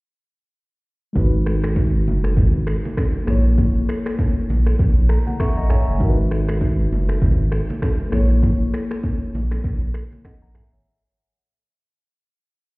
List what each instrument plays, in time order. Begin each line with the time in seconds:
1.13 sub bass G#1, tine electric piano G#3 D#4 F#4, kick, low conga
1.18 tine electric piano B4
1.46 finger snap, cross-stick
1.64 finger snap, cross-stick
1.76 kick, high bongo
2.06 sub bass F#1, high bongo, low bongo
2.24 finger snap, cross-stick
2.37 sub bass G#1, kick, low conga
2.67 finger snap, cross-stick
2.85 low bongo
2.97 finger snap, kick, cross-stick, high bongo
3.25 sub bass A#1, tine electric piano A#3 E4 G#4, finger snap, cross-stick, low conga
3.30 tine electric piano C#5
3.58 kick, low conga, shaker
3.89 finger snap, cross-stick, shaker
4.06 finger snap, cross-stick, shaker
4.19 kick, high bongo, shaker
4.49 sub bass A#1, high bongo, low bongo, shaker
4.66 finger snap, cross-stick, shaker
4.79 sub bass A#1, kick, low conga, shaker
5.09 tine electric piano A#5, finger snap, cross-stick, shaker
5.27 tine electric piano F#5, low bongo, shaker
5.40 tine electric piano E5 A#5 C#6, finger snap, kick, cross-stick, high bongo, shaker
5.57 sub bass A#1, tine electric piano D#5 F#5 A#5
5.70 tine electric piano C#5 E5 G#5, finger snap, cross-stick, low conga, shaker
5.88 sub bass F#1, tine electric piano C#5 E5, shaker
5.98 sub bass G#1, tine electric piano G#3 D#4 F#4, kick, low conga, shaker
6.03 tine electric piano A#4
6.09 tine electric piano B4
6.31 finger snap, cross-stick, shaker
6.48 finger snap, cross-stick, shaker
6.61 kick, high bongo, shaker
6.91 sub bass F#1, high bongo, low bongo, shaker
7.09 finger snap, cross-stick, shaker
7.21 sub bass G#1, kick, low conga, shaker
7.52 finger snap, cross-stick, shaker
7.69 low bongo, shaker
7.82 finger snap, kick, cross-stick, high bongo, shaker
8.10 sub bass A#1, tine electric piano A#3 E4 G#4, finger snap, cross-stick, low conga, shaker
8.15 tine electric piano C#5
8.30 shaker
8.43 kick, low conga, shaker
8.73 finger snap, cross-stick, shaker
8.90 finger snap, cross-stick, shaker
9.03 kick, high bongo, shaker
9.34 sub bass A#1, high bongo, low bongo, shaker
9.51 finger snap, cross-stick, high bongo, shaker
9.64 sub bass A#1, kick, low conga, shaker
9.94 finger snap, cross-stick, shaker
10.12 low bongo, shaker
10.25 tine electric piano D#5 F#5, finger snap, kick, cross-stick, high bongo
10.42 sub bass A#1, tine electric piano F#5 A#5
10.55 tine electric piano E5 G#5, finger snap, cross-stick, low conga
10.73 sub bass G#1, tine electric piano C#5 E5